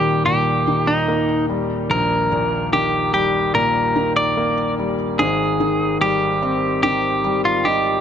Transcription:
0, 0, Header, 1, 3, 480
1, 0, Start_track
1, 0, Key_signature, -3, "major"
1, 0, Tempo, 821918
1, 1110, Time_signature, 4, 2, 24, 8
1, 4676, End_track
2, 0, Start_track
2, 0, Title_t, "Clean electric guitar"
2, 0, Program_c, 0, 27
2, 0, Note_on_c, 0, 67, 92
2, 130, Note_off_c, 0, 67, 0
2, 150, Note_on_c, 0, 67, 91
2, 510, Note_on_c, 0, 63, 72
2, 521, Note_off_c, 0, 67, 0
2, 847, Note_off_c, 0, 63, 0
2, 1115, Note_on_c, 0, 70, 91
2, 1569, Note_off_c, 0, 70, 0
2, 1595, Note_on_c, 0, 67, 81
2, 1826, Note_off_c, 0, 67, 0
2, 1833, Note_on_c, 0, 67, 86
2, 2069, Note_off_c, 0, 67, 0
2, 2072, Note_on_c, 0, 70, 97
2, 2407, Note_off_c, 0, 70, 0
2, 2432, Note_on_c, 0, 74, 95
2, 2768, Note_off_c, 0, 74, 0
2, 3032, Note_on_c, 0, 68, 96
2, 3488, Note_off_c, 0, 68, 0
2, 3513, Note_on_c, 0, 67, 87
2, 3982, Note_off_c, 0, 67, 0
2, 3989, Note_on_c, 0, 67, 95
2, 4326, Note_off_c, 0, 67, 0
2, 4352, Note_on_c, 0, 65, 84
2, 4467, Note_on_c, 0, 67, 96
2, 4474, Note_off_c, 0, 65, 0
2, 4676, Note_off_c, 0, 67, 0
2, 4676, End_track
3, 0, Start_track
3, 0, Title_t, "Grand piano"
3, 0, Program_c, 1, 0
3, 0, Control_c, 1, 64, 127
3, 0, Note_on_c, 1, 27, 61
3, 0, Note_on_c, 1, 39, 67
3, 0, Note_on_c, 1, 46, 57
3, 0, Note_on_c, 1, 51, 55
3, 0, Note_on_c, 1, 55, 53
3, 148, Note_off_c, 1, 46, 0
3, 157, Note_on_c, 1, 46, 54
3, 388, Note_off_c, 1, 51, 0
3, 396, Note_on_c, 1, 51, 56
3, 633, Note_on_c, 1, 58, 62
3, 848, Note_off_c, 1, 55, 0
3, 873, Note_on_c, 1, 55, 60
3, 1087, Note_off_c, 1, 27, 0
3, 1088, Note_off_c, 1, 39, 0
3, 1090, Note_off_c, 1, 46, 0
3, 1109, Note_on_c, 1, 34, 68
3, 1330, Note_off_c, 1, 51, 0
3, 1354, Note_on_c, 1, 46, 60
3, 1568, Note_off_c, 1, 58, 0
3, 1594, Note_on_c, 1, 51, 60
3, 1808, Note_off_c, 1, 55, 0
3, 1837, Note_on_c, 1, 55, 59
3, 2064, Note_off_c, 1, 46, 0
3, 2073, Note_on_c, 1, 46, 61
3, 2304, Note_off_c, 1, 51, 0
3, 2313, Note_on_c, 1, 51, 57
3, 2554, Note_on_c, 1, 58, 65
3, 2770, Note_off_c, 1, 55, 0
3, 2798, Note_on_c, 1, 55, 59
3, 3006, Note_off_c, 1, 34, 0
3, 3008, Note_off_c, 1, 46, 0
3, 3010, Note_off_c, 1, 51, 0
3, 3018, Note_off_c, 1, 58, 0
3, 3027, Note_off_c, 1, 55, 0
3, 3032, Note_on_c, 1, 32, 64
3, 3033, Note_on_c, 1, 44, 70
3, 3037, Control_c, 1, 64, 0
3, 3148, Control_c, 1, 64, 127
3, 3272, Note_on_c, 1, 51, 60
3, 3511, Note_on_c, 1, 55, 61
3, 3752, Note_on_c, 1, 60, 62
3, 3984, Note_off_c, 1, 51, 0
3, 3993, Note_on_c, 1, 51, 57
3, 4222, Note_off_c, 1, 55, 0
3, 4231, Note_on_c, 1, 55, 61
3, 4470, Note_on_c, 1, 63, 64
3, 4676, Note_off_c, 1, 32, 0
3, 4676, Note_off_c, 1, 44, 0
3, 4676, Note_off_c, 1, 51, 0
3, 4676, Note_off_c, 1, 55, 0
3, 4676, Note_off_c, 1, 60, 0
3, 4676, Note_off_c, 1, 63, 0
3, 4676, End_track
0, 0, End_of_file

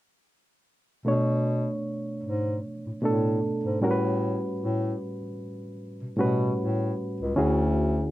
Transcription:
0, 0, Header, 1, 3, 480
1, 0, Start_track
1, 0, Key_signature, 2, "minor"
1, 0, Tempo, 789474
1, 639, Time_signature, 4, 2, 24, 8
1, 4931, End_track
2, 0, Start_track
2, 0, Title_t, "Reed electric piano"
2, 0, Program_c, 0, 4
2, 637, Note_on_c, 0, 47, 64
2, 643, Note_on_c, 0, 57, 58
2, 650, Note_on_c, 0, 62, 54
2, 657, Note_on_c, 0, 73, 70
2, 737, Control_c, 0, 64, 127
2, 1461, Note_off_c, 0, 47, 0
2, 1464, Note_off_c, 0, 57, 0
2, 1468, Note_off_c, 0, 62, 0
2, 1471, Note_off_c, 0, 73, 0
2, 1834, Note_on_c, 0, 47, 60
2, 1841, Note_on_c, 0, 57, 55
2, 1847, Note_on_c, 0, 62, 54
2, 1856, Note_on_c, 0, 69, 71
2, 2317, Note_off_c, 0, 47, 0
2, 2320, Note_off_c, 0, 57, 0
2, 2320, Note_on_c, 0, 45, 73
2, 2323, Note_off_c, 0, 62, 0
2, 2323, Note_on_c, 0, 55, 68
2, 2327, Control_c, 0, 64, 0
2, 2328, Note_off_c, 0, 69, 0
2, 2328, Note_on_c, 0, 61, 68
2, 2333, Note_on_c, 0, 66, 66
2, 2338, Note_on_c, 0, 70, 65
2, 2374, Note_off_c, 0, 70, 0
2, 2377, Note_on_c, 0, 71, 83
2, 2432, Control_c, 0, 64, 127
2, 3143, Note_off_c, 0, 45, 0
2, 3144, Note_off_c, 0, 55, 0
2, 3147, Note_off_c, 0, 61, 0
2, 3149, Note_off_c, 0, 66, 0
2, 3171, Note_off_c, 0, 71, 0
2, 3751, Note_on_c, 0, 45, 68
2, 3758, Note_on_c, 0, 55, 59
2, 3762, Note_on_c, 0, 61, 58
2, 3765, Note_on_c, 0, 66, 65
2, 3773, Note_on_c, 0, 71, 70
2, 4380, Note_off_c, 0, 45, 0
2, 4383, Note_off_c, 0, 55, 0
2, 4385, Note_off_c, 0, 61, 0
2, 4386, Note_off_c, 0, 66, 0
2, 4391, Note_off_c, 0, 71, 0
2, 4475, Note_on_c, 0, 50, 65
2, 4476, Note_on_c, 0, 61, 66
2, 4481, Note_on_c, 0, 64, 62
2, 4486, Control_c, 0, 64, 0
2, 4487, Note_on_c, 0, 66, 58
2, 4492, Note_on_c, 0, 68, 69
2, 4611, Control_c, 0, 64, 127
2, 4931, Note_off_c, 0, 50, 0
2, 4931, Note_off_c, 0, 61, 0
2, 4931, Note_off_c, 0, 64, 0
2, 4931, Note_off_c, 0, 66, 0
2, 4931, Note_off_c, 0, 68, 0
2, 4931, End_track
3, 0, Start_track
3, 0, Title_t, "Bass clarinet"
3, 0, Program_c, 1, 71
3, 645, Note_on_c, 1, 47, 83
3, 1066, Note_off_c, 1, 47, 0
3, 1358, Note_on_c, 1, 44, 71
3, 1570, Note_off_c, 1, 44, 0
3, 1740, Note_on_c, 1, 45, 39
3, 1780, Note_off_c, 1, 45, 0
3, 1841, Note_on_c, 1, 45, 62
3, 2052, Note_off_c, 1, 45, 0
3, 2080, Note_on_c, 1, 44, 34
3, 2135, Note_off_c, 1, 44, 0
3, 2212, Note_on_c, 1, 44, 70
3, 2304, Note_off_c, 1, 44, 0
3, 2319, Note_on_c, 1, 45, 76
3, 2743, Note_off_c, 1, 45, 0
3, 2797, Note_on_c, 1, 45, 79
3, 3010, Note_off_c, 1, 45, 0
3, 3657, Note_on_c, 1, 47, 36
3, 3698, Note_off_c, 1, 47, 0
3, 3761, Note_on_c, 1, 47, 67
3, 3972, Note_off_c, 1, 47, 0
3, 4004, Note_on_c, 1, 45, 77
3, 4214, Note_off_c, 1, 45, 0
3, 4382, Note_on_c, 1, 37, 64
3, 4470, Note_off_c, 1, 37, 0
3, 4480, Note_on_c, 1, 38, 84
3, 4903, Note_off_c, 1, 38, 0
3, 4931, End_track
0, 0, End_of_file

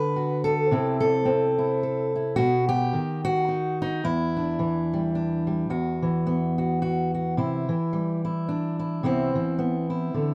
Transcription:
0, 0, Header, 1, 2, 480
1, 0, Start_track
1, 0, Key_signature, 1, "minor"
1, 0, Tempo, 554017
1, 624, Time_signature, 3, 2, 24, 8
1, 8959, End_track
2, 0, Start_track
2, 0, Title_t, "Steel-string acoustic guitar"
2, 0, Program_c, 0, 25
2, 0, Note_on_c, 0, 50, 60
2, 0, Note_on_c, 0, 71, 100
2, 140, Note_on_c, 0, 66, 50
2, 379, Note_off_c, 0, 71, 0
2, 382, Note_on_c, 0, 69, 100
2, 597, Note_off_c, 0, 66, 0
2, 617, Note_on_c, 0, 48, 72
2, 623, Note_off_c, 0, 50, 0
2, 625, Note_on_c, 0, 60, 48
2, 632, Note_on_c, 0, 64, 44
2, 859, Note_off_c, 0, 69, 0
2, 870, Note_on_c, 0, 69, 90
2, 1075, Note_off_c, 0, 60, 0
2, 1086, Note_on_c, 0, 60, 58
2, 1362, Note_off_c, 0, 64, 0
2, 1373, Note_on_c, 0, 64, 49
2, 1565, Note_off_c, 0, 69, 0
2, 1587, Note_on_c, 0, 69, 50
2, 1855, Note_off_c, 0, 64, 0
2, 1867, Note_on_c, 0, 64, 44
2, 2027, Note_off_c, 0, 60, 0
2, 2032, Note_off_c, 0, 48, 0
2, 2039, Note_off_c, 0, 69, 0
2, 2040, Note_off_c, 0, 64, 0
2, 2045, Note_on_c, 0, 66, 102
2, 2065, Note_on_c, 0, 47, 77
2, 2324, Note_off_c, 0, 66, 0
2, 2327, Note_on_c, 0, 67, 108
2, 2540, Note_on_c, 0, 51, 59
2, 2541, Note_off_c, 0, 47, 0
2, 2809, Note_off_c, 0, 67, 0
2, 2812, Note_on_c, 0, 66, 97
2, 3019, Note_on_c, 0, 63, 49
2, 3297, Note_off_c, 0, 63, 0
2, 3307, Note_on_c, 0, 63, 88
2, 3474, Note_off_c, 0, 51, 0
2, 3495, Note_off_c, 0, 66, 0
2, 3498, Note_on_c, 0, 40, 67
2, 3503, Note_off_c, 0, 63, 0
2, 3505, Note_on_c, 0, 64, 90
2, 3782, Note_on_c, 0, 62, 46
2, 3978, Note_on_c, 0, 52, 59
2, 4276, Note_on_c, 0, 55, 49
2, 4453, Note_off_c, 0, 62, 0
2, 4463, Note_on_c, 0, 62, 47
2, 4729, Note_off_c, 0, 55, 0
2, 4739, Note_on_c, 0, 55, 39
2, 4913, Note_off_c, 0, 52, 0
2, 4916, Note_off_c, 0, 62, 0
2, 4927, Note_off_c, 0, 40, 0
2, 4936, Note_on_c, 0, 40, 56
2, 4937, Note_off_c, 0, 64, 0
2, 4939, Note_off_c, 0, 55, 0
2, 4941, Note_on_c, 0, 66, 56
2, 5220, Note_on_c, 0, 52, 54
2, 5428, Note_on_c, 0, 59, 51
2, 5692, Note_off_c, 0, 66, 0
2, 5702, Note_on_c, 0, 66, 48
2, 5898, Note_off_c, 0, 66, 0
2, 5908, Note_on_c, 0, 66, 58
2, 6179, Note_off_c, 0, 66, 0
2, 6189, Note_on_c, 0, 66, 45
2, 6360, Note_off_c, 0, 59, 0
2, 6361, Note_off_c, 0, 66, 0
2, 6379, Note_off_c, 0, 40, 0
2, 6388, Note_on_c, 0, 48, 61
2, 6395, Note_on_c, 0, 64, 61
2, 6657, Note_off_c, 0, 52, 0
2, 6660, Note_on_c, 0, 52, 56
2, 6663, Note_off_c, 0, 48, 0
2, 6869, Note_on_c, 0, 55, 46
2, 7142, Note_off_c, 0, 64, 0
2, 7145, Note_on_c, 0, 64, 53
2, 7352, Note_on_c, 0, 62, 52
2, 7609, Note_off_c, 0, 64, 0
2, 7619, Note_on_c, 0, 64, 50
2, 7800, Note_off_c, 0, 52, 0
2, 7804, Note_off_c, 0, 62, 0
2, 7822, Note_off_c, 0, 64, 0
2, 7825, Note_on_c, 0, 48, 63
2, 7828, Note_off_c, 0, 55, 0
2, 7832, Note_on_c, 0, 52, 50
2, 7838, Note_on_c, 0, 59, 52
2, 7844, Note_on_c, 0, 60, 52
2, 7850, Note_on_c, 0, 64, 61
2, 8094, Note_off_c, 0, 52, 0
2, 8104, Note_off_c, 0, 48, 0
2, 8104, Note_on_c, 0, 52, 53
2, 8301, Note_off_c, 0, 59, 0
2, 8305, Note_on_c, 0, 59, 52
2, 8566, Note_off_c, 0, 64, 0
2, 8576, Note_on_c, 0, 64, 53
2, 8785, Note_off_c, 0, 52, 0
2, 8788, Note_on_c, 0, 50, 53
2, 8959, Note_off_c, 0, 50, 0
2, 8959, Note_off_c, 0, 59, 0
2, 8959, Note_off_c, 0, 60, 0
2, 8959, Note_off_c, 0, 64, 0
2, 8959, End_track
0, 0, End_of_file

